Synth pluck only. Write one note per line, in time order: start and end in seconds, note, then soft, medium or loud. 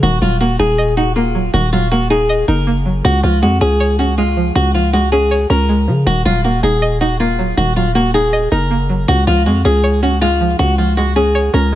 0.03 0.97 D#3 loud
0.22 1.16 F#3 medium
0.41 1.15 A#3 medium
0.59 0.96 D#4 medium
0.78 1.73 D#5 loud
0.97 1.91 D#4 medium
1.16 1.90 A#3 medium
1.35 1.71 F#3 medium
1.54 2.48 D#3 medium
1.73 2.67 F#3 medium
1.92 2.66 A#3 medium
2.10 2.47 D#4 medium
2.29 3.05 D#5 loud
2.48 3.05 D#4 medium
2.67 3.05 A#3 medium
2.86 3.05 F#3 medium
3.05 3.99 C#3 loud
3.24 4.18 F3 medium
3.42 4.17 G#3 medium
3.61 3.98 C#4 medium
3.80 4.75 C#5 loud
3.99 4.93 C#4 medium
4.18 4.92 G#3 medium
4.37 4.73 F3 medium
4.56 5.50 C#3 medium
4.74 5.69 F3 medium
4.93 5.68 G#3 medium
5.12 5.49 C#4 medium
5.31 6.07 C#5 loud
5.50 6.07 C#4 medium
5.69 6.07 G#3 medium
5.88 6.07 F3 medium
6.07 7.01 D#3 medium
6.25 7.20 F#3 medium
6.44 7.19 A#3 medium
6.63 7.00 D#4 medium
6.82 7.76 D#5 loud
7.01 7.95 D#4 medium
7.20 7.94 A#3 medium
7.39 7.75 F#3 medium
7.57 8.52 D#3 medium
7.76 8.71 F#3 medium
7.95 8.70 A#3 medium
8.14 8.51 D#4 medium
8.33 9.08 D#5 loud
8.52 9.08 D#4 medium
8.71 9.08 A#3 medium
8.89 9.08 F#3 medium
9.08 10.03 C#3 medium
9.27 10.22 F3 medium
9.46 10.20 G#3 loud
9.65 10.01 C#4 medium
9.84 10.78 C#5 loud
10.03 10.97 C#4 medium
10.21 10.96 G#3 medium
10.40 10.77 F3 medium
10.59 11.54 C#3 loud
10.78 11.73 F3 medium
10.97 11.71 G#3 medium
11.16 11.53 C#4 medium
11.35 11.75 C#5 loud
11.54 11.75 C#4 medium